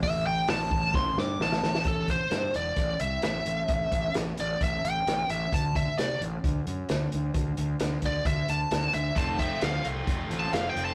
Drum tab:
HH |o---o-----------|x-x-x-x-x-x-x-x-|x-x-x-x-x-x-x-x-|x-x-x-x-x-x-x-x-|
SD |----o---o-o-oooo|----o-------o---|----o-------o---|----o-------o---|
BD |o-----o-o-------|o-o-----o-------|o-o-----o-------|o-o-----o-------|

HH |x-x-x-x-x-x-x-x-|x-x-x-x-x-x-x-x-|
SD |----o-------o---|----o-------o---|
BD |o-----o-o-------|o-o-----o-------|